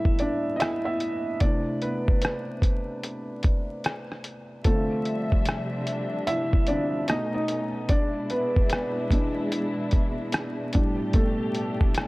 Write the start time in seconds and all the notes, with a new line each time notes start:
Already playing: A2 G3 A3 D4 E4 A4 E5
0.05 kick
0.19 D4 D5, closed hi-hat
0.56 D#5 E5, closed hi-hat
0.62 E4, cross-stick
0.85 E4 E5
1.00 closed hi-hat
1.40 C3 A3 D4 E4 D5, kick, closed hi-hat
1.82 B3 B4, closed hi-hat
2.08 kick
2.22 B3 B4, cross-stick, closed hi-hat
2.62 kick, closed hi-hat
3.04 closed hi-hat
3.43 kick, closed hi-hat
3.84 cross-stick, closed hi-hat
4.12 cross-stick
4.24 closed hi-hat
4.64 C3 D3 F3 G3 A3 C4 D4 F4 A4 E5, kick, closed hi-hat
5.05 closed hi-hat
5.32 kick
5.45 cross-stick, closed hi-hat
5.87 closed hi-hat
6.27 E4 E5, closed hi-hat
6.53 kick
6.67 D3 C4 D4 F4 D5, closed hi-hat
7.08 B2 A3 C#4 D#4 D#5, cross-stick, closed hi-hat
7.34 D#4 D#5
7.48 closed hi-hat
7.89 G#3 D4 E4 D5, kick, closed hi-hat
8.30 B3 B4, closed hi-hat
8.56 kick
8.70 B3 B4, cross-stick, closed hi-hat
9.10 E3 G#3 D4, kick, closed hi-hat
9.52 closed hi-hat
9.91 kick, closed hi-hat
10.32 cross-stick, closed hi-hat
10.73 A2 G3 A3 D4 G4, kick, closed hi-hat
11.13 A3 A4, kick, closed hi-hat
11.55 closed hi-hat
11.81 kick
11.95 cross-stick, closed hi-hat